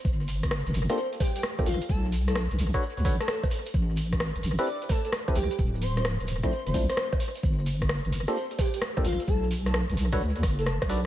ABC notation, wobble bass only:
X:1
M:4/4
L:1/16
Q:"Swing 16ths" 1/4=130
K:Gdor
V:1 name="Wobble bass" clef=bass
G,,,4- G,,, G,,, G,,, z6 z B,,, z | =B,,,4- B,,, B,,, B,,, z2 D,, A,,, z4 z | A,,,4- A,,, A,,, A,,, z6 z C,, z | D,,,4- D,,, D,,, D,,, z2 F,,, C,, z4 z |
G,,,4- G,,, G,,, G,,, z6 z B,,, z | =B,,,4- B,,, B,,, B,,,2 D,,2 ^F,,,3 B,,,3 |]